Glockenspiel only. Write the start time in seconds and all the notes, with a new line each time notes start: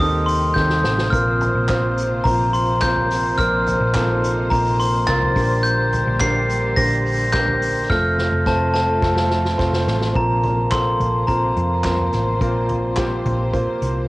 Already playing: D#6
0.26 C6
0.54 G6
1.10 F6
2.24 A#5
2.53 C6
2.82 G6
3.38 F6
4.50 A#5
4.80 C6
5.07 A6
5.63 G6
6.20 C7
6.76 A#6
7.32 G6
7.90 F6
8.47 A5
8.74 A5
10.16 A#5
10.71 C6
11.27 A#5